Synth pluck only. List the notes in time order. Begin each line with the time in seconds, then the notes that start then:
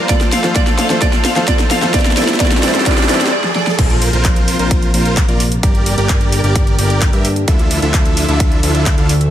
0.09 D5
0.32 F5
0.55 D5
0.78 F5
1.02 D5
1.25 F5
1.48 D5
1.71 F5
1.94 D5
2.17 D5
2.40 D5
2.63 D5
2.86 D5
3.09 D5
3.32 D5
3.55 D5